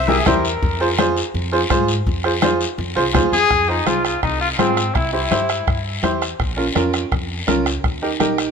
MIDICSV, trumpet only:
0, 0, Header, 1, 2, 480
1, 0, Start_track
1, 0, Key_signature, -4, "minor"
1, 0, Tempo, 361011
1, 827, Time_signature, 4, 2, 24, 8
1, 11315, End_track
2, 0, Start_track
2, 0, Title_t, "Trumpet"
2, 0, Program_c, 0, 56
2, 0, Note_on_c, 0, 72, 91
2, 115, Note_on_c, 0, 68, 93
2, 135, Note_off_c, 0, 72, 0
2, 355, Note_on_c, 0, 70, 94
2, 375, Note_off_c, 0, 68, 0
2, 1310, Note_off_c, 0, 70, 0
2, 4433, Note_on_c, 0, 68, 116
2, 4909, Note_on_c, 0, 63, 95
2, 4929, Note_off_c, 0, 68, 0
2, 5149, Note_on_c, 0, 65, 84
2, 5169, Note_off_c, 0, 63, 0
2, 5384, Note_off_c, 0, 65, 0
2, 5392, Note_on_c, 0, 65, 78
2, 5610, Note_off_c, 0, 65, 0
2, 5626, Note_on_c, 0, 63, 88
2, 5847, Note_off_c, 0, 63, 0
2, 5863, Note_on_c, 0, 65, 85
2, 5971, Note_off_c, 0, 65, 0
2, 6096, Note_on_c, 0, 60, 87
2, 6579, Note_on_c, 0, 64, 86
2, 6599, Note_off_c, 0, 60, 0
2, 6812, Note_off_c, 0, 64, 0
2, 6820, Note_on_c, 0, 64, 81
2, 7729, Note_off_c, 0, 64, 0
2, 11315, End_track
0, 0, End_of_file